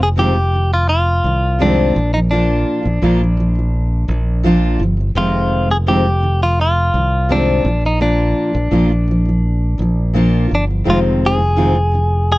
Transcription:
Already playing: fingered electric bass F1
0.00 steel-string acoustic guitar F2 C3 D#3, clean electric guitar G#4
0.16 steel-string acoustic guitar F2 C3 D#3 G#3 C4 F4, clean electric guitar G4
0.34 steel-string acoustic guitar F2 C3
0.52 steel-string acoustic guitar F2 C3 D#3
0.70 steel-string acoustic guitar F2 C3 D#3, clean electric guitar F4
0.89 clean electric guitar F4
1.23 fingered electric bass C2, steel-string acoustic guitar F2 C3 D#3
1.59 steel-string acoustic guitar F2 C3 D#3 G#3 C4 F4, clean electric guitar D4
1.95 fingered electric bass A#1, steel-string acoustic guitar A#2 F3
2.13 steel-string acoustic guitar A#2 F3, clean electric guitar D#4
2.31 steel-string acoustic guitar A#2 F3 A#3 D4 F4, clean electric guitar D4
2.83 fingered electric bass A#1, steel-string acoustic guitar A#2 F3
3.02 fingered electric bass A#1, steel-string acoustic guitar A#2 F3 A#3 D4 F4
3.20 steel-string acoustic guitar A#2 F3
3.37 steel-string acoustic guitar A#2 F3
3.55 steel-string acoustic guitar A#2 F3
4.08 fingered electric bass A#1, steel-string acoustic guitar A#2 F3
4.43 steel-string acoustic guitar A#2 F3 A#3 D4 F4
4.79 fingered electric bass G1, steel-string acoustic guitar A#2 F3
4.97 steel-string acoustic guitar A#2 F3
5.15 fingered electric bass F1, steel-string acoustic guitar F2 C3 D#3 G#3 C4 F4, clean electric guitar F4
5.69 steel-string acoustic guitar F2 C3, clean electric guitar G#4
5.86 steel-string acoustic guitar F2 C3 D#3 G#3 C4 F4, clean electric guitar G4
6.04 steel-string acoustic guitar F2 C3 D#3
6.20 steel-string acoustic guitar F2 C3 D#3
6.39 steel-string acoustic guitar F2 C3 D#3, clean electric guitar F4
6.61 clean electric guitar F4
6.93 fingered electric bass C2, steel-string acoustic guitar F2 C3 D#3
7.29 steel-string acoustic guitar F2 C3 D#3 G#3 C4 F4, clean electric guitar D4
7.64 fingered electric bass A#1, steel-string acoustic guitar A#2 F3
7.81 steel-string acoustic guitar A#2 F3
7.86 clean electric guitar D#4
8.00 steel-string acoustic guitar A#2 F3 A#3 D4 F4, clean electric guitar D4
8.53 fingered electric bass A#1, steel-string acoustic guitar A#2 F3
8.71 fingered electric bass A#1, steel-string acoustic guitar A#2 F3 A#3 D4 F4
8.88 steel-string acoustic guitar A#2 F3
9.08 steel-string acoustic guitar A#2 F3
9.25 steel-string acoustic guitar A#2 F3
9.78 fingered electric bass A#1, steel-string acoustic guitar A#2 F3
10.14 steel-string acoustic guitar A#2 F3 A#3 D4 F4
10.49 fingered electric bass G1, steel-string acoustic guitar A#2 F3
10.55 clean electric guitar D4
10.67 steel-string acoustic guitar A#2 F3
10.84 fingered electric bass F1, steel-string acoustic guitar F2 C3 D#3 G#3 C4 F4
10.90 clean electric guitar F4
11.26 clean electric guitar G#4
11.39 steel-string acoustic guitar F2
11.56 steel-string acoustic guitar F2 C3 D#3 G#3 C4 F4
11.74 steel-string acoustic guitar F2
11.92 steel-string acoustic guitar F2 C3 D#3
12.32 clean electric guitar G#4

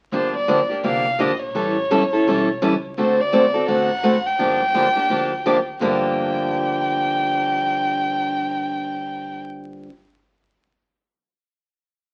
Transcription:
0.12 upright bass G1, steel-string acoustic guitar D3 F3 A#3 D4 G4, violin C5
0.36 violin D5
0.48 steel-string acoustic guitar D3 F3 A#3 D4 G4
0.69 steel-string acoustic guitar A#3 D4 G4
0.83 upright bass C2, steel-string acoustic guitar D3 F3 A#3 D4 G4, violin F5
1.19 upright bass A#1, steel-string acoustic guitar D3 F3 A#3 D4 G4, violin D#5
1.42 violin C#5
1.55 upright bass A1, steel-string acoustic guitar E3 G3 C#4 E4 A4
1.91 upright bass A1, steel-string acoustic guitar E3 G3 C#4 E4 A4
2.13 steel-string acoustic guitar C#4 E4 A4
2.27 upright bass B1, steel-string acoustic guitar E3 G3 C#4 E4 A4
2.62 upright bass C#2, steel-string acoustic guitar E3 G3 C#4 E4 A4
2.98 upright bass D2, steel-string acoustic guitar D3 A3 C4 F#4 A4, violin C5
3.21 violin D5
3.33 steel-string acoustic guitar D3 A3 C4 F#4 A4
3.54 steel-string acoustic guitar C4 F#4 A4
3.68 upright bass A1, steel-string acoustic guitar D3 A3 C4 F#4 A4, violin F#5
4.03 steel-string acoustic guitar D3 A3 C4 F#4 A4
4.27 violin G5
4.39 upright bass G1, steel-string acoustic guitar D3 F3 A#3 D4 G4
4.74 steel-string acoustic guitar D3 F3 A#3 D4 G4
4.95 steel-string acoustic guitar A#3 D4 G4
5.10 upright bass D2, steel-string acoustic guitar D3 F3 A#3 D4 G4
5.46 steel-string acoustic guitar D3 F3 A#3 D4 G4
5.80 upright bass G1, steel-string acoustic guitar G2 D3 F3 A#3 D4 G4, violin G5

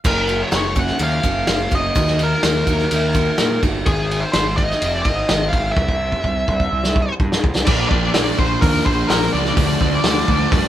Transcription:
0.04 picked electric bass F#1, steel-string acoustic guitar F#2 C#3 F#3 A#3 C#4 F#4, lead electric guitar A#4, kick, crash
0.28 steel-string acoustic guitar F#3 A#3 C#4 F#4, ride
0.42 lead electric guitar C#5
0.51 picked electric bass F#1, steel-string acoustic guitar F#3 A#3 C#4 F#4, snare, ride
0.56 lead electric guitar C#5
0.75 steel-string acoustic guitar F#2 C#3 F#3 A#3 C#4 F#4, lead electric guitar F#5, kick, ride
0.87 snare
0.99 picked electric bass D#2, steel-string acoustic guitar F#3 A#3 C#4 F#4, ride
1.03 lead electric guitar F5
1.23 picked electric bass F#1, steel-string acoustic guitar F#2 C#3 F#3 A#3 C#4 F#4, kick, ride
1.47 picked electric bass F#1, steel-string acoustic guitar F#3 A#3 C#4 F#4, snare, ride
1.71 picked electric bass F#1, steel-string acoustic guitar F#3 A#3 C#4 F#4, lead electric guitar D#5, kick, ride
1.95 picked electric bass D#2, steel-string acoustic guitar D#3 A#3 D#4 F#4, kick, ride
2.07 snare
2.19 steel-string acoustic guitar A#3 D#4 F#4, ride
2.23 lead electric guitar A#4
2.43 picked electric bass D#2, steel-string acoustic guitar D#3 A#3 D#4 F#4, snare, ride
2.67 picked electric bass D#2, steel-string acoustic guitar D#3 A#3 D#4 F#4, kick, ride
2.79 snare
2.91 picked electric bass D#2, steel-string acoustic guitar D#3 A#3 D#4 F#4, ride
3.14 steel-string acoustic guitar D#3 A#3 D#4 F#4, kick, ride
3.38 picked electric bass A#2, steel-string acoustic guitar D#3 A#3 D#4 F#4, snare, ride
3.63 picked electric bass G1, steel-string acoustic guitar A#3 D#4 F#4, kick, ride
3.86 picked electric bass G#1, lead electric guitar G#4, kick, ride
4.11 ride
4.20 lead electric guitar C5
4.32 picked electric bass G#1, lead electric guitar C5, snare, ride
4.57 lead electric guitar D#5, kick, ride
4.71 snare
4.82 picked electric bass F1, ride
5.02 picked electric bass G#1, lead electric guitar D#5, kick, ride
5.29 picked electric bass G#1, snare, ride
5.48 lead electric guitar F5
5.53 picked electric bass G#1, kick, ride
5.72 lead electric guitar E5
5.77 picked electric bass C2, kick
5.88 kick
6.12 kick
6.24 picked electric bass C2, kick
6.48 picked electric bass C2, kick
6.60 kick
6.72 picked electric bass C2
6.84 snare
6.96 kick
7.20 picked electric bass G2, kick
7.32 snare
7.44 picked electric bass C2, kick
7.55 snare
7.65 picked electric bass A#1, distorted electric guitar A#2 F3 A#3 D4, lead electric guitar D5, kick, crash
7.89 picked electric bass A#1, distorted electric guitar A#3 D4, lead electric guitar D5, kick
7.94 distorted electric guitar F3
8.13 picked electric bass A#1, distorted electric guitar A#2 F3 A#3 D4, snare, open hi-hat
8.38 picked electric bass A#1, distorted electric guitar F3 A#3 D4, lead electric guitar C5, kick
8.61 picked electric bass D#2, lead electric guitar A#4, kick, open hi-hat
8.85 picked electric bass A#1, lead electric guitar C5, kick
9.07 picked electric bass A#1, distorted electric guitar A#2 F3 A#3 D4, lead electric guitar A#4, snare, open hi-hat
9.22 snare
9.32 picked electric bass C#2, distorted electric guitar F3 A#3 D4, lead electric guitar D5
9.45 snare
9.56 picked electric bass D2, distorted electric guitar D3 F3 A3 D4, kick, open hi-hat
9.81 picked electric bass D2, distorted electric guitar F3 A3 D4, kick
10.04 picked electric bass D2, distorted electric guitar D3 F3 A3 D4, snare, open hi-hat
10.28 picked electric bass D2, distorted electric guitar F3 A3 D4, kick
10.52 picked electric bass G2, kick, open hi-hat

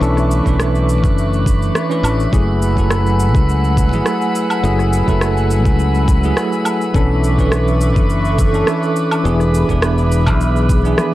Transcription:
Already playing: analog synth pad A3 E5 C#6 D6, tine electric piano D4 A4 B4, synth texture B4 B5
0.00 fingered electric bass B1, tine electric piano E3 C#4 D4 A4, shaker
0.17 cross-stick, shaker
0.31 shaker
0.44 fingered electric bass B1, tine electric piano E3 C#4 D4 B4, kick, shaker
0.60 cross-stick, shaker
0.75 shaker
0.89 shaker
1.04 fingered electric bass F#1, kick, shaker
1.18 shaker
1.33 shaker
1.46 kick, shaker
1.62 shaker
1.75 cross-stick, shaker
1.89 tine electric piano E3 C#4 D4 B4, shaker
2.03 fingered electric bass A1, low woodblock, shaker
2.20 shaker
2.32 fingered electric bass F#1, tine electric piano F#3 A3 E4 G#4, analog synth pad F#5 G#5 E6, kick, shaker
2.62 shaker
2.76 tine electric piano F#3 A3 E4 A4, kick, shaker
2.90 cross-stick, shaker
3.06 shaker
3.20 shaker
3.35 fingered electric bass C#2, kick, shaker
3.49 shaker
3.64 shaker
3.77 kick, shaker
3.91 tine electric piano F#3 A3 E4 G#4, shaker
4.06 cross-stick, shaker
4.22 shaker
4.35 shaker
4.50 low woodblock, shaker
4.63 fingered electric bass F#1, tine electric piano F#3 A3 E4 G#4, shaker
4.79 cross-stick, shaker
4.93 shaker
5.06 fingered electric bass F#1, tine electric piano F#3 A3 E4 A4, kick, shaker
5.21 cross-stick, shaker
5.37 shaker
5.51 shaker
5.65 fingered electric bass C#2, kick, shaker
5.79 shaker
5.95 shaker
6.08 kick, shaker
6.21 tine electric piano F#3 A3 E4, shaker
6.25 tine electric piano G#4
6.37 cross-stick, shaker
6.53 shaker
6.65 low woodblock, shaker
6.81 shaker
6.94 fingered electric bass B1, tine electric piano E3 C#4 D4 A4, analog synth pad A4 E5 C#6 D6, kick, shaker
7.24 shaker
7.37 tine electric piano E3 C#4 D4 B4, kick, shaker
7.52 cross-stick, shaker
7.68 shaker
7.81 shaker
7.96 fingered electric bass F#1, kick, shaker
8.10 shaker
8.25 shaker
8.39 kick, shaker
8.51 tine electric piano E3 C#4 D4 A4, shaker
8.67 cross-stick, shaker
8.83 shaker
8.96 shaker
9.11 low woodblock, shaker
9.24 fingered electric bass E1, tine electric piano E3 B3 D4 G#4, analog synth pad G#4 E5 B5, shaker
9.40 cross-stick, shaker
9.54 shaker
9.67 fingered electric bass E1, tine electric piano E3 B3 D4 B4, kick, shaker
9.82 cross-stick, shaker
9.98 shaker
10.12 shaker
10.26 fingered electric bass B1, kick, low woodblock, shaker
10.41 shaker
10.56 shaker
10.69 kick, shaker
10.82 tine electric piano E3 B3 D4, shaker
10.86 tine electric piano G#4
10.98 cross-stick, high tom, shaker

